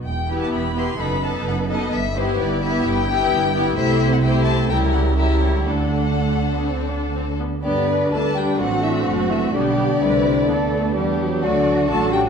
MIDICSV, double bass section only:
0, 0, Header, 1, 2, 480
1, 0, Start_track
1, 0, Key_signature, 1, "minor"
1, 0, Tempo, 472813
1, 37, Time_signature, 4, 2, 24, 8
1, 1956, Tempo, 463320
1, 3872, Key_signature, 1, "major"
1, 5316, Tempo, 491400
1, 8196, Tempo, 471328
1, 12446, End_track
2, 0, Start_track
2, 0, Title_t, "Double bass section"
2, 0, Program_c, 0, 48
2, 32, Note_on_c, 0, 28, 36
2, 464, Note_off_c, 0, 28, 0
2, 521, Note_on_c, 0, 28, 34
2, 944, Note_off_c, 0, 28, 0
2, 995, Note_on_c, 0, 30, 42
2, 1419, Note_off_c, 0, 30, 0
2, 1473, Note_on_c, 0, 30, 44
2, 1897, Note_off_c, 0, 30, 0
2, 1952, Note_on_c, 0, 31, 49
2, 2379, Note_off_c, 0, 31, 0
2, 2431, Note_on_c, 0, 31, 45
2, 2855, Note_off_c, 0, 31, 0
2, 2911, Note_on_c, 0, 31, 51
2, 3336, Note_off_c, 0, 31, 0
2, 3388, Note_on_c, 0, 31, 51
2, 3812, Note_off_c, 0, 31, 0
2, 3867, Note_on_c, 0, 36, 49
2, 4781, Note_off_c, 0, 36, 0
2, 4821, Note_on_c, 0, 37, 47
2, 5804, Note_on_c, 0, 38, 34
2, 5806, Note_off_c, 0, 37, 0
2, 7486, Note_off_c, 0, 38, 0
2, 7722, Note_on_c, 0, 43, 35
2, 8161, Note_off_c, 0, 43, 0
2, 8191, Note_on_c, 0, 38, 32
2, 8666, Note_off_c, 0, 38, 0
2, 8675, Note_on_c, 0, 33, 39
2, 9153, Note_on_c, 0, 30, 35
2, 9160, Note_off_c, 0, 33, 0
2, 9628, Note_off_c, 0, 30, 0
2, 9633, Note_on_c, 0, 35, 39
2, 10106, Note_off_c, 0, 35, 0
2, 10114, Note_on_c, 0, 36, 32
2, 10591, Note_off_c, 0, 36, 0
2, 10597, Note_on_c, 0, 38, 40
2, 11072, Note_off_c, 0, 38, 0
2, 11079, Note_on_c, 0, 40, 40
2, 11556, Note_on_c, 0, 38, 42
2, 11562, Note_off_c, 0, 40, 0
2, 12034, Note_on_c, 0, 33, 37
2, 12035, Note_off_c, 0, 38, 0
2, 12446, Note_off_c, 0, 33, 0
2, 12446, End_track
0, 0, End_of_file